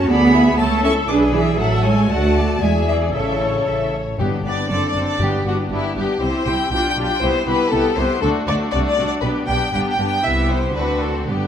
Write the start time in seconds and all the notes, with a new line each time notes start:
0.08 D2 B3 G#4 D5 B5
0.33 E4 G#4 E5
0.58 C#2 A3 A4 C#5 A5
0.84 C#4 E4 A4 E5 C#6
1.08 B1 D4 G#4 B4 D6
1.33 E3 D4 G#4 D5 E5
1.58 A1 F#3 A4 E5 F#5
1.84 G#3 E4 C#5 G#5
2.09 D2 A3 F#4 D5 F#5 A5
2.36 D5
2.61 E2 G#3 E4 G#4 D5 E5 G#5
2.88 E3 D5 E5
3.13 A1 C#3 E4 A4 C#5 E5
3.41 C#5
3.66 A1 E5
3.94 C#5
4.18 G1 G2 B3 D4 G4
4.44 G1 G2 B3 D4 G4 D5
4.69 F#1 F#2 C4 D4 A4 D5
4.88 D5
4.94 F#1 F#2 C4 D4 A4
5.05 D5
5.19 G1 G2 B3 D4 G4
5.45 G1 G2 B3 D4 F#4 G4
5.70 G1 G2 B3 D4 E4 G4
5.95 G1 G2 B3 D4 G4
6.20 C2 C3 C4 E4 G4 C5
6.46 C2 C3 C4 E4 G4 G5
6.71 B1 B2 D4 F4 G4 G5
6.89 G5
6.96 B1 B2 D4 F4 G4
7.06 G5
7.21 C2 C3 B3 E4 G4 C5
7.46 C2 C3 B3 E4 G4 B4
7.71 C2 C3 B3 E4 G4 A4
7.96 C2 C3 B3 E4 G4 C5
8.21 D2 D3 A3 D4 F#4 A4
8.46 D2 D3 A3 D4 F#4 D5
8.72 C2 C3 A3 D4 F#4 D5
8.89 D5
8.97 C2 C3 A3 D4 F#4
9.07 D5
9.22 B1 B2 B3 D4 G4 B4
9.47 B1 B2 B3 D4 G4 G5
9.72 G1 G2 B3 D4 G4 G5
9.91 G5
9.98 G1 G2 B3 D4 G4
10.07 G5
10.23 C2 C3 B3 E4 G4 E5
10.50 C5
10.75 D2 D3 C4 D4 F#4 B4
11.01 A4
11.27 G1 G2 B3 D4 G4